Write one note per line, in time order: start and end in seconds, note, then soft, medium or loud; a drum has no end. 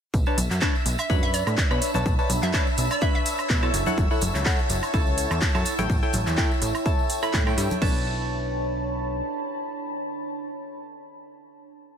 0.14 0.25 B1 loud
0.14 3.74 D4 medium
0.14 7.83 E5 medium
0.14 7.83 E6 medium
0.14 kick loud
0.14 tambourine soft
0.14 shaker soft
0.26 0.39 D4 medium
0.26 0.39 B4 medium
0.26 0.39 C#5 medium
0.26 0.39 A5 loud
0.26 tambourine soft
0.30 7.82 C#5 medium
0.38 0.49 B1 medium
0.38 open hi-hat loud
0.38 tambourine medium
0.38 high conga medium
0.38 shaker medium
0.51 0.60 F#2 medium
0.51 clap soft
0.51 tambourine soft
0.51 shaker soft
0.61 0.76 D4 medium
0.61 0.76 B4 medium
0.61 0.76 C#5 medium
0.61 0.76 A5 loud
0.61 kick loud
0.61 clap loud
0.61 tambourine medium
0.61 shaker soft
0.68 7.82 A5 medium
0.75 tambourine soft
0.86 0.97 B1 medium
0.86 open hi-hat medium
0.86 tambourine medium
0.86 shaker medium
0.98 1.10 E5 loud
0.98 tambourine soft
0.98 high woodblock medium
0.98 shaker soft
1.06 1.43 F#2 medium
1.06 1.68 D4 medium
1.06 1.68 B4 medium
1.06 1.68 C#5 medium
1.06 4.51 B5 medium
1.06 1.68 B5 loud
1.06 kick loud
1.06 tambourine soft
1.06 shaker soft
1.23 1.32 E5 medium
1.23 tambourine soft
1.34 1.47 D5 medium
1.34 open hi-hat loud
1.34 tambourine loud
1.34 shaker medium
1.47 1.56 A2 medium
1.47 tambourine soft
1.47 high woodblock medium
1.47 shaker soft
1.57 kick loud
1.57 clap loud
1.57 tambourine soft
1.57 shaker soft
1.71 1.80 B2 medium
1.71 1.91 D4 medium
1.71 1.91 B4 medium
1.71 1.91 C#5 medium
1.71 1.91 B5 medium
1.71 tambourine soft
1.71 high woodblock medium
1.82 open hi-hat medium
1.82 tambourine medium
1.82 shaker medium
1.94 2.04 B1 medium
1.94 2.15 D4 medium
1.94 2.15 B4 medium
1.94 2.15 C#5 medium
1.94 2.15 A5 loud
1.94 tambourine soft
1.94 high conga loud
1.94 shaker soft
2.06 2.17 B1 loud
2.06 kick loud
2.06 tambourine medium
2.06 shaker soft
2.19 2.31 D4 medium
2.19 2.31 B4 medium
2.19 2.31 C#5 medium
2.19 2.31 A5 loud
2.19 tambourine soft
2.29 2.41 B1 medium
2.29 open hi-hat loud
2.29 tambourine loud
2.29 high conga medium
2.29 shaker medium
2.42 2.52 F#2 medium
2.42 2.54 E5 medium
2.42 clap soft
2.42 tambourine soft
2.42 shaker soft
2.53 2.68 D4 medium
2.53 2.68 B4 medium
2.53 2.68 C#5 medium
2.53 2.68 A5 loud
2.53 kick loud
2.53 clap loud
2.53 tambourine medium
2.53 shaker soft
2.67 tambourine soft
2.78 2.89 B1 medium
2.78 open hi-hat loud
2.78 tambourine loud
2.78 shaker medium
2.91 3.00 D5 loud
2.91 tambourine soft
2.91 high woodblock medium
2.91 shaker soft
3.01 3.60 D4 medium
3.01 3.60 B4 medium
3.01 3.60 C#5 medium
3.01 3.10 E5 medium
3.01 3.60 B5 loud
3.01 kick loud
3.01 tambourine medium
3.01 shaker soft
3.15 3.22 E5 medium
3.15 tambourine soft
3.26 open hi-hat loud
3.26 tambourine loud
3.26 shaker medium
3.38 tambourine soft
3.38 high woodblock medium
3.38 shaker soft
3.49 3.70 B2 loud
3.49 kick loud
3.49 clap loud
3.49 tambourine medium
3.49 shaker soft
3.63 3.83 E4 medium
3.63 3.83 A4 medium
3.63 3.83 C#5 medium
3.63 3.83 A5 medium
3.63 tambourine soft
3.63 high woodblock medium
3.74 3.85 F#1 medium
3.74 7.82 E4 medium
3.74 open hi-hat medium
3.74 tambourine loud
3.74 shaker medium
3.86 4.07 E4 medium
3.86 4.07 A4 medium
3.86 4.07 C#5 medium
3.86 4.07 F#5 loud
3.86 tambourine soft
3.86 high conga loud
3.86 shaker soft
3.98 4.09 F#1 loud
3.98 kick loud
3.98 tambourine medium
3.98 shaker soft
4.08 4.23 E4 medium
4.08 4.23 A4 medium
4.08 4.23 C#5 medium
4.08 5.66 F#5 medium
4.08 4.23 F#5 loud
4.08 tambourine soft
4.21 4.33 F#1 medium
4.21 open hi-hat loud
4.21 tambourine loud
4.21 high conga medium
4.21 shaker medium
4.35 4.44 C#2 medium
4.35 clap soft
4.35 tambourine soft
4.35 shaker soft
4.46 4.60 E4 medium
4.46 4.60 A4 medium
4.46 4.60 C#5 medium
4.46 4.60 F#5 loud
4.46 kick loud
4.46 clap loud
4.46 tambourine medium
4.46 shaker soft
4.59 tambourine soft
4.69 4.81 F#1 medium
4.69 open hi-hat loud
4.69 tambourine loud
4.69 shaker medium
4.83 tambourine soft
4.83 high woodblock medium
4.83 shaker soft
4.93 5.27 C#2 medium
4.93 5.52 E4 medium
4.93 5.52 A4 medium
4.93 5.52 C#5 medium
4.93 5.52 A5 loud
4.93 kick loud
4.93 tambourine medium
4.93 shaker soft
5.07 tambourine soft
5.17 open hi-hat loud
5.17 tambourine loud
5.17 shaker medium
5.31 5.40 E2 medium
5.31 tambourine soft
5.31 high woodblock medium
5.31 shaker soft
5.41 kick loud
5.41 clap loud
5.41 tambourine soft
5.41 shaker soft
5.55 5.64 F#2 medium
5.55 5.75 E4 medium
5.55 5.75 A4 medium
5.55 5.75 C#5 medium
5.55 5.75 A5 medium
5.55 tambourine soft
5.55 high woodblock medium
5.65 open hi-hat loud
5.65 tambourine loud
5.65 shaker medium
5.79 5.88 A1 medium
5.79 5.99 E4 medium
5.79 5.99 A4 medium
5.79 5.99 C#5 medium
5.79 5.99 G5 loud
5.79 tambourine soft
5.79 high conga loud
5.79 shaker soft
5.90 6.01 A1 loud
5.90 kick loud
5.90 tambourine medium
5.90 shaker soft
6.03 6.15 E4 medium
6.03 6.15 A4 medium
6.03 6.15 C#5 medium
6.03 6.15 G5 loud
6.03 7.82 G5 medium
6.03 tambourine soft
6.13 6.25 A1 medium
6.13 open hi-hat loud
6.13 tambourine loud
6.13 high conga medium
6.13 shaker medium
6.26 6.36 E2 medium
6.26 clap soft
6.26 tambourine soft
6.26 shaker soft
6.37 6.52 E4 medium
6.37 6.52 A4 medium
6.37 6.52 C#5 medium
6.37 6.52 G5 loud
6.37 kick loud
6.37 clap loud
6.37 tambourine soft
6.37 shaker soft
6.51 tambourine soft
6.62 6.73 A1 medium
6.62 open hi-hat loud
6.62 tambourine medium
6.62 shaker medium
6.75 tambourine soft
6.75 high woodblock medium
6.75 shaker soft
6.86 7.20 E4 medium
6.86 7.20 A4 medium
6.86 7.20 C#5 medium
6.86 7.20 A5 loud
6.86 kick loud
6.86 tambourine medium
6.86 shaker soft
6.99 tambourine soft
7.10 open hi-hat loud
7.10 tambourine medium
7.10 shaker medium
7.22 7.43 E4 medium
7.22 7.43 A4 medium
7.22 7.43 C#5 medium
7.22 7.43 B5 loud
7.22 tambourine soft
7.22 high woodblock medium
7.22 shaker soft
7.33 7.54 A2 loud
7.33 kick loud
7.33 clap loud
7.33 tambourine medium
7.33 shaker soft
7.47 7.80 E4 medium
7.47 7.80 A4 medium
7.47 7.80 C#5 medium
7.47 7.80 G5 medium
7.47 tambourine soft
7.47 high woodblock medium
7.58 7.69 G2 loud
7.58 open hi-hat loud
7.58 tambourine medium
7.58 shaker medium
7.70 tambourine soft
7.70 high conga medium
7.70 shaker soft
7.82 9.22 B1 medium
7.82 10.87 D4 medium
7.82 10.87 B4 medium
7.82 10.87 C#5 medium
7.82 10.87 A5 loud
7.82 kick loud
7.82 crash medium
7.90 10.94 C#5 medium
7.97 11.02 A5 medium
8.04 11.09 B5 medium